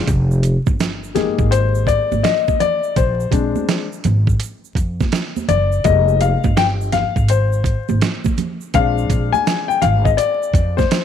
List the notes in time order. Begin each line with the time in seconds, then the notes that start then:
0.07 F1, kick, closed hi-hat, shaker
0.31 shaker
0.43 closed hi-hat, shaker
0.67 G1, kick, high conga, shaker
0.80 snare, closed hi-hat, shaker
1.04 shaker
1.15 G#3 A#3 D#4 G4 G#4, snare, closed hi-hat, high conga, low conga, shaker
1.39 G#1, kick, shaker
1.51 C5, closed hi-hat, shaker
1.75 shaker
1.87 D5, kick, closed hi-hat, shaker
2.12 G#1, high conga, shaker
2.23 D#5, snare, closed hi-hat, shaker
2.48 kick, high conga, shaker
2.60 D5, closed hi-hat, low conga, shaker
2.83 shaker
2.96 A#1 C5, kick, closed hi-hat, shaker
3.20 shaker
3.31 A#1 G#3 C4 D4, kick, closed hi-hat, shaker
3.56 high conga, shaker
3.69 snare, closed hi-hat, shaker
3.93 shaker
4.04 G#1, closed hi-hat, high conga, low conga, shaker
4.27 kick, shaker
4.40 closed hi-hat, shaker
4.65 shaker
4.75 F2, kick, closed hi-hat, shaker
5.00 kick, snare, high conga, shaker
5.12 snare, closed hi-hat, shaker
5.36 high conga, shaker
5.48 F#1 D5, closed hi-hat, low conga, shaker
5.72 shaker
5.84 F1 G3 G#3 A#3 D#4 D#5, kick, closed hi-hat, shaker
6.08 shaker
6.21 F5, closed hi-hat, shaker
6.44 G1, kick, high conga, shaker
6.57 G5, snare, closed hi-hat, shaker
6.81 shaker
6.92 F5, snare, closed hi-hat, high conga, low conga, shaker
7.16 G#1, kick, shaker
7.28 C5, closed hi-hat, shaker
7.53 shaker
7.64 kick, closed hi-hat, shaker
7.89 G#1, high conga, shaker
8.02 snare, closed hi-hat, shaker
8.25 kick, high conga, shaker
8.38 closed hi-hat, low conga, shaker
8.61 shaker
8.74 A#1 G#3 C4 D4 F5, kick, closed hi-hat, shaker
8.98 shaker
9.10 A#1, kick, closed hi-hat, shaker
9.32 G#5, high conga, shaker
9.47 snare, closed hi-hat, shaker
9.68 G5, shaker
9.82 G#1 F5, closed hi-hat, high conga, low conga, shaker
10.05 D#5, kick, shaker
10.17 D5, closed hi-hat, shaker
10.43 shaker
10.54 F2, kick, closed hi-hat, shaker
10.77 C5, kick, snare, high conga, shaker
10.91 snare, closed hi-hat, shaker